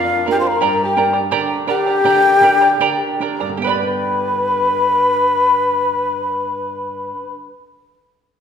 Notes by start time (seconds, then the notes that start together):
Already playing: F2 D4 F4 A#4 D5 F5
0.26 D4 F4 A#4 D5 F5
0.31 G4 G5
0.40 C5 F5 C6
0.45 D5 A#5
0.50 A#4
0.61 G2 G4 A#4 D5 G5 A#5
0.84 G4 G5
0.97 D4 G4 A#4 D5 G5 A#5
1.13 A#4 D5 A#5
1.31 D3 G4 A#4 D5 G5 A#5
1.67 D4 G4 A#4 D5 G5 A#5
1.86 A#4 D5 A#5
2.04 D3 G4 A#4 D5 G5 A#5
2.41 D4 G4 A#4 D5 G5 A#5
2.61 A#4 D5 A#5
2.80 D3 G4 A#4 D5 G5 A#5
3.20 D4 G4 A#4 D5 G5 A#5
3.40 G2 A#4 D5 A#5
3.49 D3
3.57 B3 G4
3.62 B4 G5 B5
3.66 G4 D5 B5
3.74 D5
3.83 G5